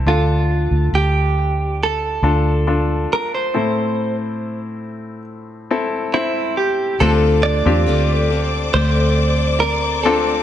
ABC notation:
X:1
M:4/4
L:1/16
Q:1/4=69
K:Dm
V:1 name="String section"
z16 | z16 | [cdd']16 |]
V:2 name="Clean electric guitar"
F4 G4 A6 B c- | c3 z8 z E2 G2 | A2 d6 c4 B2 A2 |]
V:3 name="Steel-string acoustic guitar"
z16 | z16 | [D,A,CFA]4 [A,CFA]2 [CFA]2 [A,CFA]4 [CF]2 [CFA]2 |]
V:4 name="Grand piano"
[DFA]8 z2 [DFA]2 [DFA]4 | [CEA]8 z2 [CEA]2 [CEc]4 | [CDFA]3 [CDFG]8 z3 [CDFA]2 |]
V:5 name="Grand piano" clef=bass
D,6 z8 z2 | A,,6 z8 z2 | D,6 z8 z2 |]
V:6 name="Fingered electric bass" clef=bass
D,,3 D,, D,,6 D,,4 z2 | z16 | D,,3 E,, D,,4 D,,8 |]